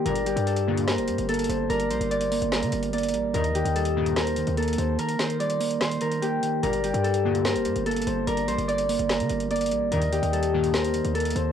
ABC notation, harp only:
X:1
M:4/4
L:1/8
Q:1/4=146
K:Gm
V:1 name="Harp"
B G A2 B2 A z | B c d2 B2 d2 | B G A2 B2 A z | B c d2 c B G2 |
B G A2 B2 A z | B c d2 B2 d2 | B G A2 B2 A z |]